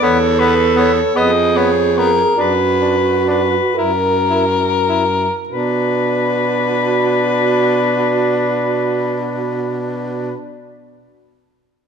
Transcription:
0.02 E2 B3 A4 C#5
0.39 B3 B4
0.77 B3 C#5
1.15 F2 B3 G#4 D#5
1.56 B3 C#5
1.96 B3 A#4
2.36 F#2 D4 F#4
2.41 B4
2.81 D4
3.27 D4 B4
3.74 F#2 E4 A#4
4.30 E4
4.89 E4
5.48 B2 D4 F#4 B4

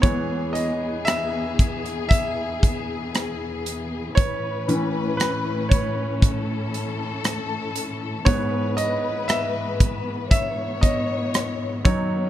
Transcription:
Already playing: B3
0.02 E2 E3 G#3 B3 G#4 C#5, kick, closed hi-hat
0.53 D#5, closed hi-hat
1.05 E5, cross-stick, closed hi-hat
1.59 kick, closed hi-hat
1.86 closed hi-hat
2.09 E5, kick, closed hi-hat
2.63 kick, closed hi-hat
3.15 cross-stick, closed hi-hat
3.66 closed hi-hat
4.15 A2 C#4 B4 C#5, kick, closed hi-hat
4.68 A2 E3 C#4, closed hi-hat
5.17 B4, cross-stick, closed hi-hat
5.69 C#5, kick, closed hi-hat
6.21 A4, kick, closed hi-hat
6.74 closed hi-hat
7.24 cross-stick, closed hi-hat
7.76 closed hi-hat
8.25 G#2 G#3 B3 B4 C#5, kick, closed hi-hat
8.77 D#5, closed hi-hat
9.28 E5, cross-stick, closed hi-hat
9.80 kick, closed hi-hat
10.31 C#5 E5, kick, closed hi-hat
10.81 D#5, kick, closed hi-hat
11.34 cross-stick, closed hi-hat
11.85 F#2 D#3 F#3 C#4 D#4 C#5, kick, closed hi-hat

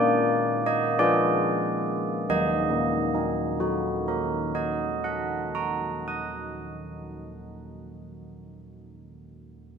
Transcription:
Already playing: A#3 D5
0.66 D#5
0.99 F4 G#4 D5
2.29 D#3 D#5
2.70 A#3
3.15 D#4
3.60 F#4
4.08 A#4
4.55 D#5
5.04 F#5
5.55 A#5
6.08 D#6

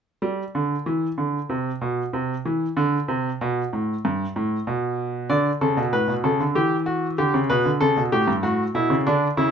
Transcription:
0.22 G3
0.55 D3
0.86 E3
1.18 D3
1.49 C3
1.81 B2
2.13 C3
2.45 E3
2.77 D3
3.08 C3
3.41 B2
3.73 A2
4.05 G2
4.36 A2
4.67 B2
5.30 D3 D5
5.61 C#3 A4
5.77 B2
5.93 A2 B4
6.08 B2
6.24 C#3 A4
6.40 D3
6.55 E3 G4
6.86 F#4
7.18 D3 G4
7.34 C#3
7.50 B2 B4
7.65 D3
7.81 C#3 A4
7.97 B2
8.12 A2 G4
8.28 G2
8.43 A2 F#4
8.75 B2 E4
8.90 C#3
9.07 D3 D4
9.37 C#3 E4

